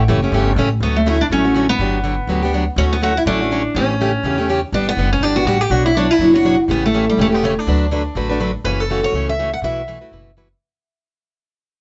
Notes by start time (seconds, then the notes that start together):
0.08 F#1 C#3 E3 A3 C#4 G4
0.23 A3 C#4 G4
0.32 G1 C#3 E3 A3 C#4 G4
0.56 A1 C#3 E3 A3 C#4 G4
0.80 D2 D3 F#3 A3 B3 C#4 F#4
0.96 A3
1.06 D3 F#3 A3 C#4 E4 F#4
1.21 D4
1.30 A1 D3 F#3 A3 C#4 F#4
1.44 A3 C#4 F#4
1.55 D3 F#3 A3 C#4 F#4
1.69 B3
1.79 G1 D3 F#3 B3 D4 G4
2.04 D3 F#3 B3 D4 G4
2.27 D2 D3 F#3 B3 D4 G4
2.42 B3 D4 G4
2.53 D3 F#3 B3 D4 G4
2.76 D2 D3 F#3 A3 C#4 F#4
2.93 B3
3.01 D3 F#3 A3 C#4 F#4
3.17 E4
3.26 A1 D3 F#3 A3 C#4 D4 F#4
3.41 A3 C#4 F#4
3.51 D3 F#3 A3 C#4 F#4
3.75 A1 C#3 E3 A3 C#4 G4
4.00 C#3 E3 A3 C#4 G4
4.23 E2 C#3 E3 A3 C#4 G4
4.38 A3 C#4 G4
4.49 C#3 E3 A3 C#4 G4
4.72 G1 D3 G3 B3 D4 G4
4.89 B3
4.97 F#1 D3 G3 B3 D4 G4
5.13 C#4
5.21 G1 D3 G3 B3 D4 G4
5.36 B3 D4 F#4 G4
5.45 A1 D3 G3 B3 D4 F#4 G4
5.61 G4
5.70 B1 B2 F#3 B3 D4 F#4 C#5
5.86 E4
5.96 B2 F#3 B3 D4 F#4 C#5
6.11 E4
6.19 F#1 B2 F#3 B3 D4 F#4 C#5
6.34 B3 D4 F#4 C#5
6.45 B2 F#3 B3 D4 F#4 C#5
6.68 A1 C#3 E3 A3 B3 C#4 G4
6.86 A3
6.94 C#3 E3 A3 C#4 G4
7.10 G3
7.17 E1 C#3 E3 A3 C#4 G4
7.21 A3
7.32 A3 B3 C#4 G4
7.43 C#3 E3 A3 C#4 G4
7.59 D4
7.67 D2 D3 F#3 A3 D4 F#4 B4
7.91 D3 F#3 A3 D4 F#4 B4
8.15 A1 D3 F#3 A3 D4 F#4 B4
8.30 A3 D4 F#4 B4
8.40 D3 F#3 A3 D4 F#4 B4
8.64 F#1 C#3 E3 A3 C#4 F#4 B4
8.80 A4
8.90 C#3 E3 A3 C#4 F#4
9.03 A3 C#4 F#4 C#5
9.12 C#2 C#3 E3 A3 C#4 F#4
9.29 E5
9.39 C#3 E3 A3 C#4 F#4
9.53 F#5
9.62 B1 B2 E3 A3 E4 F#4 B4 E5
9.87 B2 E3 A3 E4 F#4 B4
10.01 A3 E4 F#4 B4
10.12 F#1 B2 E3 A3 E4 F#4 B4
10.37 B2 E3 A3 E4 F#4 B4